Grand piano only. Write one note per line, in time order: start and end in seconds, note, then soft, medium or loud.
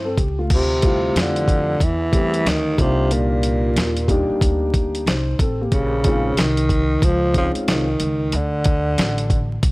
0.05 0.17 C4 medium
0.05 0.17 A4 medium
0.18 0.37 G4 medium
0.39 0.69 A3 soft
0.39 0.69 F4 medium
0.82 1.75 G3 medium
0.82 1.76 A3 medium
0.82 1.76 C4 medium
0.82 1.77 E4 medium
0.82 1.77 F4 medium
2.12 2.38 G3 medium
2.12 2.38 A3 medium
2.12 2.39 C4 medium
2.12 2.39 E4 medium
2.12 2.40 G4 medium
2.77 3.96 G3 medium
2.77 3.97 A#3 medium
2.77 3.97 D4 medium
2.77 3.98 D#4 medium
2.77 3.98 F4 medium
4.08 5.01 G3 medium
4.08 5.02 A#3 medium
4.08 5.02 D4 medium
4.08 5.02 D#4 medium
4.08 5.03 G4 medium
5.08 5.38 D#4 soft
5.08 5.38 C5 medium
5.40 5.59 C4 medium
5.40 5.59 A4 medium
5.61 5.92 A#3 soft
5.61 5.91 G4 medium
6.05 6.30 G#3 medium
6.05 6.30 C4 medium
6.05 6.30 C#4 medium
6.05 6.31 D#4 medium
6.05 6.31 F4 medium
7.35 7.84 G#3 medium
7.35 7.84 C4 medium
7.35 7.84 C#4 medium
7.35 7.85 D#4 medium
7.35 7.85 F4 medium